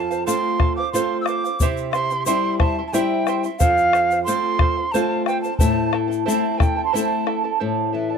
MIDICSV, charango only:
0, 0, Header, 1, 2, 480
1, 0, Start_track
1, 0, Key_signature, 0, "minor"
1, 0, Tempo, 667408
1, 1149, Time_signature, 3, 2, 24, 8
1, 5882, End_track
2, 0, Start_track
2, 0, Title_t, "Charango"
2, 0, Program_c, 0, 24
2, 0, Note_on_c, 0, 69, 53
2, 0, Note_on_c, 0, 72, 56
2, 73, Note_off_c, 0, 69, 0
2, 75, Note_off_c, 0, 72, 0
2, 76, Note_on_c, 0, 77, 61
2, 83, Note_on_c, 0, 72, 45
2, 184, Note_off_c, 0, 77, 0
2, 186, Note_off_c, 0, 72, 0
2, 189, Note_on_c, 0, 69, 77
2, 193, Note_on_c, 0, 77, 79
2, 195, Note_on_c, 0, 72, 81
2, 423, Note_off_c, 0, 69, 0
2, 423, Note_off_c, 0, 72, 0
2, 431, Note_off_c, 0, 77, 0
2, 431, Note_on_c, 0, 69, 59
2, 432, Note_on_c, 0, 72, 62
2, 444, Note_on_c, 0, 77, 72
2, 549, Note_off_c, 0, 77, 0
2, 550, Note_off_c, 0, 69, 0
2, 551, Note_off_c, 0, 72, 0
2, 557, Note_on_c, 0, 77, 57
2, 569, Note_on_c, 0, 72, 43
2, 673, Note_off_c, 0, 77, 0
2, 676, Note_off_c, 0, 72, 0
2, 680, Note_on_c, 0, 69, 83
2, 684, Note_on_c, 0, 72, 86
2, 686, Note_on_c, 0, 77, 97
2, 914, Note_off_c, 0, 69, 0
2, 916, Note_off_c, 0, 72, 0
2, 917, Note_off_c, 0, 77, 0
2, 923, Note_on_c, 0, 69, 55
2, 927, Note_on_c, 0, 72, 67
2, 927, Note_on_c, 0, 77, 60
2, 1028, Note_off_c, 0, 77, 0
2, 1036, Note_off_c, 0, 69, 0
2, 1036, Note_on_c, 0, 77, 51
2, 1038, Note_off_c, 0, 72, 0
2, 1049, Note_on_c, 0, 72, 41
2, 1152, Note_off_c, 0, 77, 0
2, 1159, Note_off_c, 0, 72, 0
2, 1166, Note_on_c, 0, 67, 76
2, 1166, Note_on_c, 0, 76, 81
2, 1168, Note_on_c, 0, 72, 81
2, 1171, Note_on_c, 0, 64, 81
2, 1171, Note_on_c, 0, 84, 80
2, 1391, Note_off_c, 0, 72, 0
2, 1395, Note_off_c, 0, 64, 0
2, 1397, Note_off_c, 0, 67, 0
2, 1397, Note_off_c, 0, 76, 0
2, 1399, Note_off_c, 0, 84, 0
2, 1400, Note_on_c, 0, 72, 50
2, 1403, Note_on_c, 0, 64, 62
2, 1407, Note_on_c, 0, 84, 59
2, 1409, Note_on_c, 0, 76, 61
2, 1507, Note_off_c, 0, 84, 0
2, 1514, Note_off_c, 0, 72, 0
2, 1515, Note_off_c, 0, 64, 0
2, 1516, Note_on_c, 0, 84, 55
2, 1518, Note_off_c, 0, 76, 0
2, 1525, Note_on_c, 0, 64, 46
2, 1526, Note_on_c, 0, 76, 51
2, 1625, Note_off_c, 0, 84, 0
2, 1626, Note_off_c, 0, 64, 0
2, 1626, Note_off_c, 0, 76, 0
2, 1627, Note_on_c, 0, 72, 77
2, 1630, Note_on_c, 0, 67, 72
2, 1634, Note_on_c, 0, 76, 77
2, 1634, Note_on_c, 0, 84, 83
2, 1635, Note_on_c, 0, 64, 82
2, 1856, Note_off_c, 0, 72, 0
2, 1859, Note_off_c, 0, 64, 0
2, 1863, Note_off_c, 0, 76, 0
2, 1865, Note_on_c, 0, 72, 69
2, 1868, Note_off_c, 0, 67, 0
2, 1868, Note_off_c, 0, 84, 0
2, 1868, Note_on_c, 0, 64, 68
2, 1871, Note_on_c, 0, 76, 63
2, 1877, Note_on_c, 0, 84, 67
2, 1986, Note_off_c, 0, 72, 0
2, 1987, Note_off_c, 0, 64, 0
2, 1989, Note_off_c, 0, 76, 0
2, 1992, Note_off_c, 0, 84, 0
2, 2001, Note_on_c, 0, 84, 52
2, 2007, Note_on_c, 0, 64, 44
2, 2007, Note_on_c, 0, 76, 45
2, 2105, Note_off_c, 0, 64, 0
2, 2108, Note_off_c, 0, 76, 0
2, 2108, Note_off_c, 0, 84, 0
2, 2109, Note_on_c, 0, 67, 78
2, 2113, Note_on_c, 0, 64, 93
2, 2113, Note_on_c, 0, 72, 76
2, 2116, Note_on_c, 0, 84, 91
2, 2117, Note_on_c, 0, 76, 89
2, 2347, Note_off_c, 0, 67, 0
2, 2349, Note_off_c, 0, 72, 0
2, 2350, Note_off_c, 0, 64, 0
2, 2351, Note_off_c, 0, 76, 0
2, 2351, Note_off_c, 0, 84, 0
2, 2357, Note_on_c, 0, 72, 60
2, 2361, Note_on_c, 0, 64, 68
2, 2362, Note_on_c, 0, 76, 70
2, 2366, Note_on_c, 0, 84, 74
2, 2468, Note_off_c, 0, 84, 0
2, 2472, Note_off_c, 0, 72, 0
2, 2473, Note_off_c, 0, 76, 0
2, 2474, Note_off_c, 0, 64, 0
2, 2476, Note_on_c, 0, 84, 52
2, 2481, Note_on_c, 0, 76, 45
2, 2486, Note_on_c, 0, 64, 43
2, 2585, Note_off_c, 0, 64, 0
2, 2588, Note_on_c, 0, 69, 84
2, 2591, Note_off_c, 0, 84, 0
2, 2591, Note_on_c, 0, 72, 85
2, 2594, Note_off_c, 0, 76, 0
2, 2596, Note_on_c, 0, 77, 77
2, 2817, Note_off_c, 0, 69, 0
2, 2823, Note_off_c, 0, 72, 0
2, 2825, Note_on_c, 0, 69, 56
2, 2827, Note_off_c, 0, 77, 0
2, 2831, Note_on_c, 0, 72, 60
2, 2836, Note_on_c, 0, 77, 70
2, 2943, Note_off_c, 0, 77, 0
2, 2946, Note_off_c, 0, 69, 0
2, 2949, Note_off_c, 0, 72, 0
2, 2951, Note_on_c, 0, 77, 56
2, 2964, Note_on_c, 0, 72, 48
2, 3066, Note_off_c, 0, 77, 0
2, 3067, Note_off_c, 0, 72, 0
2, 3067, Note_on_c, 0, 69, 83
2, 3074, Note_on_c, 0, 77, 76
2, 3075, Note_on_c, 0, 72, 78
2, 3304, Note_off_c, 0, 69, 0
2, 3306, Note_off_c, 0, 72, 0
2, 3310, Note_off_c, 0, 77, 0
2, 3312, Note_on_c, 0, 69, 67
2, 3314, Note_on_c, 0, 72, 64
2, 3323, Note_on_c, 0, 77, 70
2, 3422, Note_off_c, 0, 77, 0
2, 3428, Note_off_c, 0, 72, 0
2, 3429, Note_off_c, 0, 69, 0
2, 3430, Note_on_c, 0, 77, 54
2, 3436, Note_on_c, 0, 72, 44
2, 3545, Note_off_c, 0, 72, 0
2, 3548, Note_off_c, 0, 77, 0
2, 3549, Note_on_c, 0, 69, 78
2, 3553, Note_on_c, 0, 72, 93
2, 3557, Note_on_c, 0, 77, 84
2, 3788, Note_off_c, 0, 69, 0
2, 3790, Note_off_c, 0, 72, 0
2, 3792, Note_off_c, 0, 77, 0
2, 3798, Note_on_c, 0, 69, 60
2, 3802, Note_on_c, 0, 72, 67
2, 3804, Note_on_c, 0, 77, 68
2, 3904, Note_off_c, 0, 77, 0
2, 3911, Note_off_c, 0, 72, 0
2, 3912, Note_off_c, 0, 69, 0
2, 3913, Note_on_c, 0, 77, 51
2, 3920, Note_on_c, 0, 72, 49
2, 4015, Note_off_c, 0, 72, 0
2, 4024, Note_on_c, 0, 72, 73
2, 4027, Note_off_c, 0, 77, 0
2, 4027, Note_on_c, 0, 64, 79
2, 4029, Note_on_c, 0, 69, 75
2, 4030, Note_on_c, 0, 76, 83
2, 4033, Note_on_c, 0, 81, 82
2, 4251, Note_off_c, 0, 76, 0
2, 4259, Note_off_c, 0, 64, 0
2, 4259, Note_off_c, 0, 69, 0
2, 4260, Note_off_c, 0, 81, 0
2, 4260, Note_on_c, 0, 76, 50
2, 4266, Note_off_c, 0, 72, 0
2, 4267, Note_on_c, 0, 64, 62
2, 4268, Note_on_c, 0, 69, 57
2, 4269, Note_on_c, 0, 81, 64
2, 4362, Note_off_c, 0, 81, 0
2, 4369, Note_off_c, 0, 69, 0
2, 4371, Note_on_c, 0, 81, 58
2, 4378, Note_off_c, 0, 64, 0
2, 4378, Note_on_c, 0, 69, 48
2, 4384, Note_off_c, 0, 76, 0
2, 4386, Note_on_c, 0, 64, 46
2, 4489, Note_off_c, 0, 64, 0
2, 4495, Note_off_c, 0, 69, 0
2, 4496, Note_off_c, 0, 81, 0
2, 4498, Note_on_c, 0, 64, 72
2, 4499, Note_on_c, 0, 72, 74
2, 4501, Note_on_c, 0, 76, 73
2, 4503, Note_on_c, 0, 69, 82
2, 4504, Note_on_c, 0, 81, 86
2, 4726, Note_off_c, 0, 76, 0
2, 4733, Note_off_c, 0, 64, 0
2, 4734, Note_off_c, 0, 69, 0
2, 4734, Note_on_c, 0, 76, 53
2, 4740, Note_off_c, 0, 81, 0
2, 4742, Note_on_c, 0, 64, 55
2, 4743, Note_on_c, 0, 69, 63
2, 4744, Note_off_c, 0, 72, 0
2, 4748, Note_on_c, 0, 81, 60
2, 4853, Note_off_c, 0, 81, 0
2, 4862, Note_off_c, 0, 76, 0
2, 4862, Note_on_c, 0, 81, 48
2, 4863, Note_off_c, 0, 69, 0
2, 4865, Note_off_c, 0, 64, 0
2, 4871, Note_on_c, 0, 69, 51
2, 4877, Note_on_c, 0, 64, 44
2, 4980, Note_off_c, 0, 64, 0
2, 4982, Note_on_c, 0, 72, 75
2, 4984, Note_off_c, 0, 69, 0
2, 4985, Note_off_c, 0, 81, 0
2, 4987, Note_on_c, 0, 76, 75
2, 4988, Note_on_c, 0, 64, 84
2, 4993, Note_on_c, 0, 69, 85
2, 4994, Note_on_c, 0, 81, 85
2, 5215, Note_off_c, 0, 76, 0
2, 5219, Note_off_c, 0, 64, 0
2, 5219, Note_off_c, 0, 69, 0
2, 5223, Note_on_c, 0, 76, 55
2, 5224, Note_off_c, 0, 81, 0
2, 5227, Note_off_c, 0, 72, 0
2, 5227, Note_on_c, 0, 64, 61
2, 5227, Note_on_c, 0, 69, 65
2, 5232, Note_on_c, 0, 81, 62
2, 5341, Note_off_c, 0, 81, 0
2, 5346, Note_off_c, 0, 69, 0
2, 5347, Note_off_c, 0, 76, 0
2, 5349, Note_off_c, 0, 64, 0
2, 5350, Note_on_c, 0, 81, 54
2, 5355, Note_on_c, 0, 69, 54
2, 5359, Note_on_c, 0, 64, 43
2, 5459, Note_off_c, 0, 64, 0
2, 5459, Note_off_c, 0, 81, 0
2, 5462, Note_off_c, 0, 69, 0
2, 5463, Note_on_c, 0, 72, 66
2, 5467, Note_on_c, 0, 76, 66
2, 5468, Note_on_c, 0, 64, 65
2, 5468, Note_on_c, 0, 81, 69
2, 5470, Note_on_c, 0, 69, 70
2, 5692, Note_off_c, 0, 76, 0
2, 5695, Note_off_c, 0, 64, 0
2, 5697, Note_off_c, 0, 69, 0
2, 5700, Note_on_c, 0, 76, 47
2, 5702, Note_off_c, 0, 81, 0
2, 5704, Note_on_c, 0, 64, 50
2, 5706, Note_on_c, 0, 69, 45
2, 5708, Note_off_c, 0, 72, 0
2, 5711, Note_on_c, 0, 81, 54
2, 5814, Note_off_c, 0, 81, 0
2, 5821, Note_off_c, 0, 69, 0
2, 5822, Note_on_c, 0, 81, 43
2, 5824, Note_off_c, 0, 64, 0
2, 5827, Note_off_c, 0, 76, 0
2, 5830, Note_on_c, 0, 69, 42
2, 5833, Note_on_c, 0, 64, 38
2, 5882, Note_off_c, 0, 64, 0
2, 5882, Note_off_c, 0, 69, 0
2, 5882, Note_off_c, 0, 81, 0
2, 5882, End_track
0, 0, End_of_file